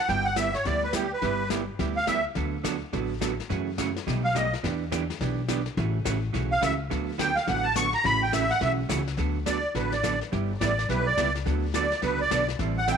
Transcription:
0.08 G1 G3 B3 E4 G4 G5, brush sweep, kick, snare
0.25 F#5
0.36 G3 B3 E4 G4 E5, kick, snare, hi-hat pedal
0.54 C#5, snare
0.65 D2 G3 B3 E4 G4 D5, brush sweep, kick, snare
0.84 B4
0.93 G3 B3 E4 G4, kick, snare, hi-hat pedal
1.13 B4
1.22 G1 G3 B3 E4 G4, brush sweep, kick, snare
1.50 G3 B3 E4 G4, kick, snare, hi-hat pedal
1.79 D2 G3 B3 E4 G4, brush sweep, kick, snare
1.97 F5
2.07 G3 B3 E4 G4 E5, kick, snare, hi-hat pedal
2.35 D2 D3 F#3 B3 F#4 A4, brush sweep, kick, snare
2.64 D3 F#3 B3 F#4 A4, kick, snare, hi-hat pedal
2.93 A1 D3 F#3 B3 F#4 A4, brush sweep, kick, snare
3.20 D3 F#3 B3 F#4 A4, kick, snare, hi-hat pedal
3.40 snare
3.49 F#2 C#3 E3 A3 C#4 F#4, brush sweep, kick, snare
3.78 C#3 E3 A3 C#4 F#4, kick, snare, hi-hat pedal
3.96 snare
4.07 B1 B2 G3 A3 D#4 G4, brush sweep, kick, snare
4.25 F5
4.34 B2 G3 A3 D#4 G4 D#5, kick, snare, hi-hat pedal
4.53 snare
4.63 E2 E3 B3 D4 G4, brush sweep, kick, snare
4.92 E3 B3 D4 G4, kick, snare, hi-hat pedal
5.10 snare
5.20 B1 E3 B3 D4 G4, brush sweep, kick, snare
5.48 E3 B3 D4 G4, kick, snare, hi-hat pedal
5.66 snare
5.77 A1 C#3 E3 A3 C#4 F#4, brush sweep, kick, snare
6.05 A1 C#3 E3 A3 C#4 F#4, kick, snare, hi-hat pedal
6.33 B1 C#3 E3 A3 C#4 F#4, brush sweep, kick, snare
6.52 F5
6.61 C#2 C#3 E3 A3 C#4 F#4 E5, kick, snare, hi-hat pedal
6.90 D2 D3 F#3 B3 F#4 A4, brush sweep, kick, snare
7.18 D3 F#3 B3 F#4 A4 G5, kick, snare, hi-hat pedal
7.36 F5, snare
7.47 A1 D3 F#3 B3 F#4 A4 F#5, brush sweep, kick, snare
7.64 A5
7.75 D3 F#3 B3 F#4 A4 C#6, kick, snare, hi-hat pedal
7.93 A#5, snare
8.04 A1 C#3 E3 A3 C#4 F#4 B5, brush sweep, kick, snare
8.23 G5
8.32 C#3 E3 A3 C#4 F#4 E5, kick, snare, hi-hat pedal
8.50 F#5, snare
8.61 B1 C#3 E3 A3 C#4 F#4 E5, brush sweep, kick, snare
8.89 C#2 C#3 E3 A3 C#4 F#4, kick, snare, hi-hat pedal
9.08 snare
9.17 D2 D3 F#3 B3 F#4 A4, brush sweep, kick, snare
9.46 D3 F#3 B3 F#4 A4 D5, kick, snare, hi-hat pedal
9.75 A1 D3 F#3 B3 F#4 A4 B4, brush sweep, kick, snare
9.92 D5, snare
10.03 D3 F#3 B3 F#4 A4, kick, snare, hi-hat pedal
10.21 snare
10.32 G1 G3 B3 E4 G4, brush sweep, kick, snare
10.60 A1 G3 B3 E4 G4 D5, kick, snare, hi-hat pedal
10.79 snare
10.89 B1 G3 B3 E4 G4 B4, brush sweep, kick, snare
11.06 D5
11.17 C#2 G3 B3 E4 G4, kick, snare, hi-hat pedal
11.35 snare
11.45 D2 D3 F#3 B3 F#4 A4, brush sweep, kick, snare
11.74 D3 F#3 B3 F#4 A4 D5, kick, snare, hi-hat pedal
11.92 snare
12.02 C#2 D3 F#3 B3 F#4 A4 B4, brush sweep, kick, snare
12.21 D5
12.31 B1 D3 F#3 B3 F#4 A4, kick, snare, hi-hat pedal
12.48 snare
12.59 A1 E3 G3 C4 E4 A4, brush sweep, kick, snare
12.78 F#5
12.88 E3 G3 C4 E4 A4 G5, kick, snare, hi-hat pedal

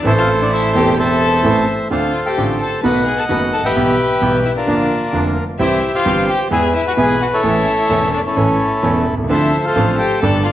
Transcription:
0.03 A1 A2 E3 A3 C4 E4 A4
0.07 A4 C5 E5
0.18 F4 F5
0.41 D4 D5
0.52 E4 E5
0.73 E1 E2 E3 A3 C4 E4 G4 A4 G5
0.77 A4
0.99 A4 C5 E5 A5
1.43 A1 A2 E3 A3 C4 E4 A4
1.90 D2 D3 A3 C4 D4 F4 A4 C5 F5
2.26 G4 C5 G5
2.37 A1 A2 D3 A3 C4 D4 F4
2.61 A4 A5
2.83 B1 B2 D#3 A3 B3 D#4 F#4 A4 B4 D#5 F#5 B5
3.07 G#4 G#5
3.18 A4 A5
3.29 F#1 F#2 D#3 A3 B3 D#4 F#4 A4 B4 B5
3.53 A4 A5
3.59 G#1
3.64 A1 G4 B4 E5 G5
3.70 A#1
3.75 B1 B2 E3 G3 B3 E4 G4
4.21 B1 B2 E3 G3 B3 E4 G4
4.45 E4 E5
4.57 D4 F4 A#4 D5
4.67 A#1 A#2 D3 F3 A#3 D4 F4
5.13 F1 F2 D3 F3 A#3 D4 F4
5.59 C2 C3 E3 G3 C4 E4 G4 C5 E5
5.95 F4 C5 F5
6.05 G1 G2 E3 G3 C4 E4 G4
6.30 G4 G5
6.51 E2 E3 G#3 B3 E4 G#4 B4 E5 G#5
6.76 E4 E5
6.88 F#4 F#5
6.97 B1 B2 E3 G#3 B3 E4 G#4 G#5
7.22 F#4 F#5
7.33 E4 A4 C#5 E5
7.43 A1 A2 E3 A3 C#4 E4 A4
7.89 E1 E2 E3 A3 C#4 E4 A4
8.14 D4 D5
8.25 C#4 E4 A4 C#5
8.36 A1 A2 E3 A3 C#4 E4 A4
8.82 E1 E2 E3 A3 C#4 E4 A4
9.13 B1
9.17 C2
9.24 C#2
9.29 D2 D3 F3 C4 D4 E4 F4 A4 C5 E5
9.63 F4 A4 C5 F5
9.76 A1 A2 F3 C4 D4 F4 A4 C5
9.98 G4 G5
10.21 G1 G2 G3 A3 D4 G4 A4 D5 A5
10.44 F4 F5

